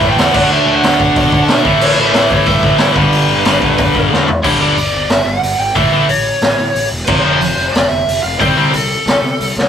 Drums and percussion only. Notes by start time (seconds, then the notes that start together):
0.01 kick
0.18 snare, open hi-hat
0.34 kick, crash
0.83 snare, open hi-hat
1.00 kick
1.16 kick, open hi-hat
1.32 kick
1.48 snare, open hi-hat
1.65 kick
1.81 crash
2.14 snare, open hi-hat
2.31 kick
2.46 kick, open hi-hat
2.63 kick
2.78 snare, open hi-hat
2.96 kick
3.12 open hi-hat
3.45 snare, open hi-hat
3.62 kick
3.78 kick, open hi-hat
3.95 kick
4.13 snare
4.28 floor tom
4.44 kick, crash
4.77 open hi-hat
5.09 snare, open hi-hat
5.43 open hi-hat
5.76 kick, open hi-hat
6.09 open hi-hat
6.42 snare, open hi-hat
6.75 open hi-hat
7.07 kick, crash
7.41 open hi-hat
7.75 snare, open hi-hat
8.09 open hi-hat
8.40 kick, open hi-hat
8.73 open hi-hat
9.07 snare, open hi-hat
9.40 open hi-hat
9.58 snare